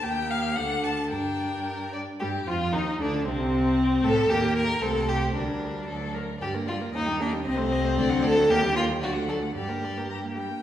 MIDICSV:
0, 0, Header, 1, 5, 480
1, 0, Start_track
1, 0, Key_signature, -2, "minor"
1, 0, Tempo, 543478
1, 27, Time_signature, 2, 2, 24, 8
1, 2428, Tempo, 522193
1, 7708, Tempo, 539568
1, 9604, End_track
2, 0, Start_track
2, 0, Title_t, "Violin"
2, 0, Program_c, 0, 40
2, 28, Note_on_c, 0, 79, 81
2, 268, Note_on_c, 0, 77, 74
2, 281, Note_off_c, 0, 79, 0
2, 495, Note_on_c, 0, 78, 74
2, 508, Note_off_c, 0, 77, 0
2, 736, Note_on_c, 0, 81, 64
2, 749, Note_off_c, 0, 78, 0
2, 974, Note_off_c, 0, 81, 0
2, 979, Note_on_c, 0, 79, 62
2, 1703, Note_off_c, 0, 79, 0
2, 1956, Note_on_c, 0, 67, 64
2, 2185, Note_on_c, 0, 65, 62
2, 2198, Note_off_c, 0, 67, 0
2, 2407, Note_off_c, 0, 65, 0
2, 2412, Note_on_c, 0, 63, 59
2, 2645, Note_off_c, 0, 63, 0
2, 2651, Note_on_c, 0, 62, 54
2, 2887, Note_off_c, 0, 62, 0
2, 2892, Note_on_c, 0, 60, 66
2, 3610, Note_on_c, 0, 69, 77
2, 3624, Note_off_c, 0, 60, 0
2, 3845, Note_off_c, 0, 69, 0
2, 3850, Note_on_c, 0, 70, 60
2, 4330, Note_on_c, 0, 72, 56
2, 4344, Note_off_c, 0, 70, 0
2, 4811, Note_off_c, 0, 72, 0
2, 4816, Note_on_c, 0, 70, 49
2, 5298, Note_off_c, 0, 70, 0
2, 5305, Note_on_c, 0, 69, 48
2, 5548, Note_on_c, 0, 70, 46
2, 5562, Note_off_c, 0, 69, 0
2, 5781, Note_off_c, 0, 70, 0
2, 5787, Note_on_c, 0, 74, 48
2, 5917, Note_on_c, 0, 70, 42
2, 5930, Note_off_c, 0, 74, 0
2, 6032, Note_on_c, 0, 74, 48
2, 6046, Note_off_c, 0, 70, 0
2, 6164, Note_on_c, 0, 70, 44
2, 6177, Note_off_c, 0, 74, 0
2, 6271, Note_off_c, 0, 70, 0
2, 6276, Note_on_c, 0, 75, 48
2, 6393, Note_on_c, 0, 79, 46
2, 6407, Note_off_c, 0, 75, 0
2, 6515, Note_on_c, 0, 75, 50
2, 6529, Note_off_c, 0, 79, 0
2, 6634, Note_on_c, 0, 79, 48
2, 6648, Note_off_c, 0, 75, 0
2, 6749, Note_off_c, 0, 79, 0
2, 6754, Note_on_c, 0, 75, 58
2, 6865, Note_on_c, 0, 72, 55
2, 6879, Note_off_c, 0, 75, 0
2, 6993, Note_on_c, 0, 75, 55
2, 7007, Note_off_c, 0, 72, 0
2, 7112, Note_on_c, 0, 72, 62
2, 7125, Note_off_c, 0, 75, 0
2, 7224, Note_off_c, 0, 72, 0
2, 7229, Note_on_c, 0, 74, 66
2, 7342, Note_on_c, 0, 78, 57
2, 7356, Note_off_c, 0, 74, 0
2, 7459, Note_on_c, 0, 74, 59
2, 7472, Note_off_c, 0, 78, 0
2, 7577, Note_on_c, 0, 78, 58
2, 7591, Note_off_c, 0, 74, 0
2, 7700, Note_off_c, 0, 78, 0
2, 7706, Note_on_c, 0, 70, 61
2, 7817, Note_on_c, 0, 67, 55
2, 7830, Note_off_c, 0, 70, 0
2, 7935, Note_on_c, 0, 70, 55
2, 7949, Note_off_c, 0, 67, 0
2, 8050, Note_on_c, 0, 67, 48
2, 8064, Note_off_c, 0, 70, 0
2, 8158, Note_off_c, 0, 67, 0
2, 8164, Note_on_c, 0, 74, 52
2, 8277, Note_on_c, 0, 78, 47
2, 8290, Note_off_c, 0, 74, 0
2, 8413, Note_on_c, 0, 74, 41
2, 8427, Note_off_c, 0, 78, 0
2, 8536, Note_on_c, 0, 78, 39
2, 8550, Note_off_c, 0, 74, 0
2, 8647, Note_off_c, 0, 78, 0
2, 8652, Note_on_c, 0, 74, 41
2, 8774, Note_on_c, 0, 70, 36
2, 8788, Note_off_c, 0, 74, 0
2, 8905, Note_on_c, 0, 74, 37
2, 8918, Note_off_c, 0, 70, 0
2, 9026, Note_on_c, 0, 70, 33
2, 9040, Note_off_c, 0, 74, 0
2, 9133, Note_off_c, 0, 70, 0
2, 9138, Note_on_c, 0, 82, 47
2, 9210, Note_off_c, 0, 82, 0
2, 9389, Note_on_c, 0, 79, 54
2, 9604, Note_off_c, 0, 79, 0
2, 9604, End_track
3, 0, Start_track
3, 0, Title_t, "Violin"
3, 0, Program_c, 1, 40
3, 28, Note_on_c, 1, 67, 55
3, 498, Note_on_c, 1, 69, 52
3, 511, Note_off_c, 1, 67, 0
3, 975, Note_on_c, 1, 70, 44
3, 988, Note_off_c, 1, 69, 0
3, 1422, Note_off_c, 1, 70, 0
3, 1459, Note_on_c, 1, 70, 50
3, 1694, Note_off_c, 1, 70, 0
3, 1703, Note_on_c, 1, 74, 47
3, 1774, Note_off_c, 1, 74, 0
3, 1942, Note_on_c, 1, 67, 62
3, 2013, Note_off_c, 1, 67, 0
3, 2192, Note_on_c, 1, 65, 74
3, 2411, Note_on_c, 1, 63, 64
3, 2424, Note_off_c, 1, 65, 0
3, 2660, Note_off_c, 1, 63, 0
3, 2665, Note_on_c, 1, 62, 67
3, 2894, Note_off_c, 1, 62, 0
3, 2900, Note_on_c, 1, 60, 79
3, 3617, Note_on_c, 1, 69, 88
3, 3630, Note_off_c, 1, 60, 0
3, 3850, Note_on_c, 1, 67, 87
3, 3864, Note_off_c, 1, 69, 0
3, 4091, Note_off_c, 1, 67, 0
3, 4101, Note_on_c, 1, 70, 88
3, 4329, Note_on_c, 1, 69, 88
3, 4343, Note_off_c, 1, 70, 0
3, 4576, Note_on_c, 1, 67, 76
3, 4590, Note_off_c, 1, 69, 0
3, 4807, Note_off_c, 1, 67, 0
3, 4813, Note_on_c, 1, 62, 57
3, 5536, Note_off_c, 1, 62, 0
3, 5799, Note_on_c, 1, 67, 66
3, 5873, Note_off_c, 1, 67, 0
3, 6042, Note_on_c, 1, 65, 70
3, 6115, Note_off_c, 1, 65, 0
3, 6291, Note_on_c, 1, 63, 75
3, 6520, Note_off_c, 1, 63, 0
3, 6530, Note_on_c, 1, 62, 77
3, 6604, Note_off_c, 1, 62, 0
3, 6759, Note_on_c, 1, 60, 88
3, 7474, Note_on_c, 1, 69, 101
3, 7488, Note_off_c, 1, 60, 0
3, 7719, Note_on_c, 1, 67, 98
3, 7732, Note_off_c, 1, 69, 0
3, 7941, Note_off_c, 1, 67, 0
3, 7946, Note_on_c, 1, 65, 93
3, 8017, Note_off_c, 1, 65, 0
3, 8186, Note_on_c, 1, 66, 86
3, 8257, Note_off_c, 1, 66, 0
3, 8418, Note_on_c, 1, 69, 74
3, 8489, Note_off_c, 1, 69, 0
3, 8658, Note_on_c, 1, 67, 58
3, 9373, Note_off_c, 1, 67, 0
3, 9604, End_track
4, 0, Start_track
4, 0, Title_t, "Viola"
4, 0, Program_c, 2, 41
4, 31, Note_on_c, 2, 58, 56
4, 496, Note_on_c, 2, 62, 53
4, 509, Note_off_c, 2, 58, 0
4, 983, Note_off_c, 2, 62, 0
4, 988, Note_on_c, 2, 62, 45
4, 1764, Note_off_c, 2, 62, 0
4, 1950, Note_on_c, 2, 55, 60
4, 2021, Note_off_c, 2, 55, 0
4, 2182, Note_on_c, 2, 53, 54
4, 2252, Note_off_c, 2, 53, 0
4, 2415, Note_on_c, 2, 51, 56
4, 2488, Note_off_c, 2, 51, 0
4, 2653, Note_on_c, 2, 50, 61
4, 2902, Note_on_c, 2, 48, 71
4, 2915, Note_off_c, 2, 50, 0
4, 3603, Note_off_c, 2, 48, 0
4, 3608, Note_on_c, 2, 57, 80
4, 3682, Note_off_c, 2, 57, 0
4, 3844, Note_on_c, 2, 58, 64
4, 4294, Note_off_c, 2, 58, 0
4, 4335, Note_on_c, 2, 57, 54
4, 4819, Note_on_c, 2, 55, 46
4, 4832, Note_off_c, 2, 57, 0
4, 5309, Note_on_c, 2, 54, 44
4, 5323, Note_off_c, 2, 55, 0
4, 5613, Note_off_c, 2, 54, 0
4, 5799, Note_on_c, 2, 55, 47
4, 5918, Note_on_c, 2, 58, 45
4, 5932, Note_off_c, 2, 55, 0
4, 6043, Note_on_c, 2, 55, 46
4, 6057, Note_off_c, 2, 58, 0
4, 6160, Note_on_c, 2, 58, 41
4, 6174, Note_off_c, 2, 55, 0
4, 6272, Note_off_c, 2, 58, 0
4, 6278, Note_on_c, 2, 58, 52
4, 6401, Note_on_c, 2, 55, 51
4, 6415, Note_off_c, 2, 58, 0
4, 6518, Note_on_c, 2, 58, 55
4, 6532, Note_off_c, 2, 55, 0
4, 6637, Note_on_c, 2, 55, 49
4, 6651, Note_off_c, 2, 58, 0
4, 6746, Note_off_c, 2, 55, 0
4, 6752, Note_on_c, 2, 60, 65
4, 6872, Note_on_c, 2, 57, 58
4, 6886, Note_off_c, 2, 60, 0
4, 6985, Note_on_c, 2, 60, 59
4, 6999, Note_off_c, 2, 57, 0
4, 7104, Note_on_c, 2, 57, 51
4, 7118, Note_off_c, 2, 60, 0
4, 7219, Note_off_c, 2, 57, 0
4, 7225, Note_on_c, 2, 57, 60
4, 7348, Note_on_c, 2, 54, 63
4, 7361, Note_off_c, 2, 57, 0
4, 7464, Note_on_c, 2, 57, 61
4, 7478, Note_off_c, 2, 54, 0
4, 7582, Note_on_c, 2, 54, 57
4, 7596, Note_off_c, 2, 57, 0
4, 7699, Note_off_c, 2, 54, 0
4, 7705, Note_on_c, 2, 58, 67
4, 7817, Note_on_c, 2, 55, 58
4, 7831, Note_off_c, 2, 58, 0
4, 7937, Note_on_c, 2, 58, 57
4, 7950, Note_off_c, 2, 55, 0
4, 8056, Note_on_c, 2, 55, 50
4, 8069, Note_off_c, 2, 58, 0
4, 8169, Note_off_c, 2, 55, 0
4, 8174, Note_on_c, 2, 54, 53
4, 8293, Note_on_c, 2, 57, 47
4, 8307, Note_off_c, 2, 54, 0
4, 8410, Note_on_c, 2, 54, 48
4, 8423, Note_off_c, 2, 57, 0
4, 8530, Note_on_c, 2, 57, 41
4, 8543, Note_off_c, 2, 54, 0
4, 8647, Note_off_c, 2, 57, 0
4, 8652, Note_on_c, 2, 55, 43
4, 8768, Note_on_c, 2, 58, 37
4, 8782, Note_off_c, 2, 55, 0
4, 8899, Note_on_c, 2, 55, 34
4, 8912, Note_off_c, 2, 58, 0
4, 9019, Note_on_c, 2, 58, 31
4, 9033, Note_off_c, 2, 55, 0
4, 9134, Note_off_c, 2, 58, 0
4, 9139, Note_on_c, 2, 55, 35
4, 9255, Note_on_c, 2, 58, 35
4, 9268, Note_off_c, 2, 55, 0
4, 9378, Note_on_c, 2, 55, 36
4, 9391, Note_off_c, 2, 58, 0
4, 9495, Note_on_c, 2, 58, 32
4, 9508, Note_off_c, 2, 55, 0
4, 9604, Note_off_c, 2, 58, 0
4, 9604, End_track
5, 0, Start_track
5, 0, Title_t, "Cello"
5, 0, Program_c, 3, 42
5, 35, Note_on_c, 3, 39, 53
5, 500, Note_on_c, 3, 38, 57
5, 513, Note_off_c, 3, 39, 0
5, 981, Note_on_c, 3, 43, 50
5, 994, Note_off_c, 3, 38, 0
5, 1776, Note_off_c, 3, 43, 0
5, 1959, Note_on_c, 3, 43, 59
5, 2178, Note_off_c, 3, 43, 0
5, 2186, Note_on_c, 3, 41, 55
5, 2426, Note_on_c, 3, 39, 60
5, 2440, Note_off_c, 3, 41, 0
5, 2655, Note_off_c, 3, 39, 0
5, 2660, Note_on_c, 3, 38, 59
5, 2903, Note_on_c, 3, 36, 67
5, 2917, Note_off_c, 3, 38, 0
5, 3606, Note_off_c, 3, 36, 0
5, 3612, Note_on_c, 3, 45, 72
5, 3843, Note_off_c, 3, 45, 0
5, 3849, Note_on_c, 3, 39, 71
5, 4297, Note_off_c, 3, 39, 0
5, 4330, Note_on_c, 3, 36, 61
5, 4807, Note_off_c, 3, 36, 0
5, 4818, Note_on_c, 3, 38, 50
5, 5299, Note_off_c, 3, 38, 0
5, 5312, Note_on_c, 3, 38, 50
5, 5790, Note_off_c, 3, 38, 0
5, 5801, Note_on_c, 3, 43, 51
5, 6248, Note_off_c, 3, 43, 0
5, 6278, Note_on_c, 3, 39, 59
5, 6759, Note_on_c, 3, 36, 70
5, 6773, Note_off_c, 3, 39, 0
5, 7230, Note_on_c, 3, 38, 84
5, 7244, Note_off_c, 3, 36, 0
5, 7709, Note_on_c, 3, 39, 74
5, 7722, Note_off_c, 3, 38, 0
5, 8173, Note_on_c, 3, 38, 63
5, 8186, Note_off_c, 3, 39, 0
5, 8655, Note_on_c, 3, 43, 49
5, 8668, Note_off_c, 3, 38, 0
5, 9443, Note_off_c, 3, 43, 0
5, 9604, End_track
0, 0, End_of_file